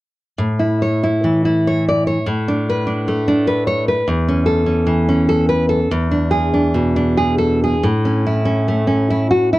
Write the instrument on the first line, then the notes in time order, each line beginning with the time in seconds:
nylon-string guitar
0.38 A2
0.59 E4
0.82 C#5
1.03 E4
1.24 E3
1.45 E4
1.67 C#5
1.89 D5
2.07 C#5
2.26 A2
2.48 D4
2.69 B4
2.87 D4
3.08 A3
3.28 D4
3.47 B4
3.67 C#5
3.88 B4
4.08 E2
4.28 C#4
4.46 A4
4.66 C#4
4.87 E3
5.09 C#4
5.29 A4
5.49 B4
5.69 A4
5.91 E2
6.11 D4
6.31 G#4
6.54 D4
6.74 B2
6.96 D4
7.17 G#4
7.38 A4
7.64 G#4
7.83 A2
8.05 C#4
8.26 E4
8.45 C#4
8.68 A3
8.87 C#4
9.10 E4
9.31 F#4
9.53 E4